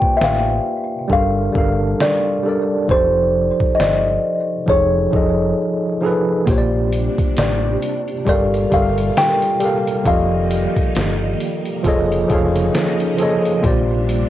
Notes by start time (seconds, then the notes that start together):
Already playing: A#3 F4 G4 B4 C5 D5 G5 G#5
0.02 kick
0.17 A1 E5
0.22 F5, snare
1.08 G1 G3 D4 A4, kick
1.12 A#4 F5
1.52 G1 G3 D4 A4, kick
1.57 A#4 F5
2.00 D5, snare
2.43 G3 D4 A4
2.47 A#4 D5
2.88 F1 F3 D#4 G4 C5, kick
2.92 A4 D5
3.60 kick
3.75 D#5
3.79 G1 D5, snare
4.66 F1 F3 D#4 G#4 A4 C#5, kick
4.72 C#5
5.11 F1 F3 D#4 G#4, kick
5.15 A4 D#5
6.01 F3 D#4 G#4 A4
6.06 B4
6.46 A#1 C3 G3 A#3 D4 F4 G4, kick, closed hi-hat
6.50 C5 C#5
6.58 D5
6.93 closed hi-hat
7.18 kick, closed hi-hat
7.37 A1 D5, snare, closed hi-hat
7.82 closed hi-hat
8.08 closed hi-hat
8.25 G1 A#2 G3 A#3 F4 G4 A4 D5, kick, closed hi-hat
8.29 A#4 F5
8.54 closed hi-hat
8.70 G1 G3 G4 A4 F5, kick, closed hi-hat
8.74 A#4 E5
8.82 F5
8.98 closed hi-hat
9.17 G5, snare, closed hi-hat
9.42 closed hi-hat
9.60 G3 G4 A4, closed hi-hat
9.64 A#4 F5
9.88 closed hi-hat
10.04 F1 D#3 F3 G3 D#4 F4 G4 A4 F5, kick, closed hi-hat
10.09 D5 D#5
10.51 closed hi-hat
10.77 kick, closed hi-hat
10.95 G1, snare, closed hi-hat
11.41 closed hi-hat
11.65 closed hi-hat
11.83 F1 C#3 F3 D#4 F4 G#4 A4, kick, closed hi-hat
11.88 C#5 D#5
12.12 closed hi-hat
12.27 F1 F3 F4 G#4 A4, kick, closed hi-hat
12.32 C#5 F5
12.55 closed hi-hat
12.74 snare, closed hi-hat
13.00 closed hi-hat
13.17 F3 F4 G#4 A4, closed hi-hat
13.22 C#5 D#5
13.45 closed hi-hat
13.62 A#1 C3 G3 A#3 D4 F4 G4, kick, closed hi-hat
13.66 C5 D5
14.09 closed hi-hat